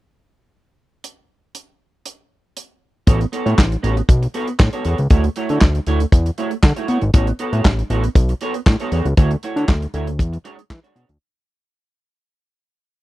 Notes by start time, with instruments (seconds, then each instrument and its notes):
1.04 closed hi-hat
1.55 closed hi-hat
2.05 closed hi-hat
2.57 closed hi-hat
3.07 analog synth bass A1, clean electric guitar B3 F#4 A4 C#5, kick, closed hi-hat
3.20 muted clean electric guitar stroke, closed hi-hat
3.32 clean electric guitar B3 F#4 A4 C#5, closed hi-hat
3.46 analog synth bass A2, clean electric guitar B3 F#4 A4 C#5, closed hi-hat
3.58 analog synth bass A1, muted clean electric guitar stroke, kick, snare, clap
3.71 muted clean electric guitar stroke, closed hi-hat
3.83 analog synth bass A1, clean electric guitar B3 F#4 A4 C#5, closed hi-hat
3.97 muted clean electric guitar stroke, closed hi-hat
4.09 analog synth bass B1, muted clean electric guitar stroke, kick, closed hi-hat
4.22 muted clean electric guitar stroke, closed hi-hat
4.34 clean electric guitar B3 F#4 A4 C#5, closed hi-hat
4.47 muted clean electric guitar stroke, closed hi-hat
4.59 analog synth bass A2, muted clean electric guitar stroke, kick, snare, clap
4.73 clean electric guitar B3 F#4 A4 C#5, closed hi-hat
4.85 analog synth bass E2, clean electric guitar B3 F#4 A4 C#5, closed hi-hat
4.98 analog synth bass C#2, muted clean electric guitar stroke, closed hi-hat
5.10 analog synth bass D2, clean electric guitar A3 E4 F#4 C#5, kick, closed hi-hat
5.24 muted clean electric guitar stroke, closed hi-hat
5.36 clean electric guitar A3 E4 F#4 C#5, closed hi-hat
5.49 analog synth bass D3, clean electric guitar A3 E4 F#4 C#5, closed hi-hat
5.61 analog synth bass D2, muted clean electric guitar stroke, kick, snare, clap
5.75 muted clean electric guitar stroke, closed hi-hat
5.87 analog synth bass D2, clean electric guitar A3 E4 F#4 C#5, closed hi-hat
6.00 muted clean electric guitar stroke, closed hi-hat
6.12 analog synth bass E2, muted clean electric guitar stroke, kick, closed hi-hat
6.26 muted clean electric guitar stroke, closed hi-hat
6.38 clean electric guitar A3 E4 F#4 C#5, closed hi-hat
6.51 muted clean electric guitar stroke, closed hi-hat
6.63 analog synth bass D3, muted clean electric guitar stroke, kick, snare, clap
6.76 clean electric guitar A3 E4 F#4 C#5, closed hi-hat
6.88 analog synth bass B2, clean electric guitar A3 E4 F#4 C#5, closed hi-hat
7.02 analog synth bass G#1, muted clean electric guitar stroke, closed hi-hat
7.14 analog synth bass A1, clean electric guitar B3 F#4 A4 C#5, kick, closed hi-hat
7.27 muted clean electric guitar stroke, closed hi-hat
7.39 clean electric guitar B3 F#4 A4 C#5, closed hi-hat
7.53 analog synth bass A2, clean electric guitar B3 F#4 A4 C#5, closed hi-hat
7.65 analog synth bass A1, muted clean electric guitar stroke, kick, snare, clap
7.78 muted clean electric guitar stroke, closed hi-hat
7.90 analog synth bass A1, clean electric guitar B3 F#4 A4 C#5, closed hi-hat
8.04 muted clean electric guitar stroke, closed hi-hat
8.15 analog synth bass B1, muted clean electric guitar stroke, kick, closed hi-hat
8.29 muted clean electric guitar stroke, closed hi-hat
8.41 clean electric guitar B3 F#4 A4 C#5, closed hi-hat
8.54 muted clean electric guitar stroke, closed hi-hat
8.66 analog synth bass A2, muted clean electric guitar stroke, kick, snare, clap
8.80 clean electric guitar B3 F#4 A4 C#5, closed hi-hat
8.92 analog synth bass E2, clean electric guitar B3 F#4 A4 C#5, closed hi-hat
9.05 analog synth bass C#2, muted clean electric guitar stroke, closed hi-hat
9.17 analog synth bass D2, clean electric guitar A3 E4 F#4 C#5, kick, closed hi-hat
9.31 muted clean electric guitar stroke, closed hi-hat
9.43 clean electric guitar A3 E4 F#4 C#5, closed hi-hat
9.56 analog synth bass D3, clean electric guitar A3 E4 F#4 C#5, closed hi-hat
9.68 analog synth bass D2, muted clean electric guitar stroke, kick, snare, clap
9.82 muted clean electric guitar stroke, closed hi-hat
9.94 analog synth bass D2, clean electric guitar A3 E4 F#4 C#5, closed hi-hat
10.07 muted clean electric guitar stroke, closed hi-hat
10.19 analog synth bass E2, muted clean electric guitar stroke, kick, closed hi-hat
10.33 muted clean electric guitar stroke, closed hi-hat
10.44 clean electric guitar G#3 D4 F#4 C#5, closed hi-hat
10.58 muted clean electric guitar stroke, closed hi-hat
10.70 analog synth bass E3, muted clean electric guitar stroke, kick, snare, clap
10.83 clean electric guitar G#3 D4 F#4 C#5, closed hi-hat
10.95 analog synth bass B2, clean electric guitar G#3 D4 F#4 C#5, closed hi-hat
11.09 analog synth bass D2, muted clean electric guitar stroke, closed hi-hat